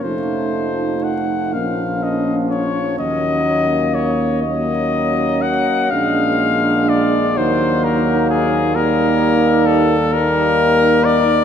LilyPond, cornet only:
\new Staff \with { instrumentName = "Cornet" } { \time 6/8 \key ees \dorian \tempo 4. = 41 c''4 ges''8 f''8 ees''8 des''8 | ees''4 des''8 ees''4 ges''8 | f''4 d''8 c''8 bes'8 aes'8 | \key ees \lydian bes'4 a'8 bes'4 d''8 | }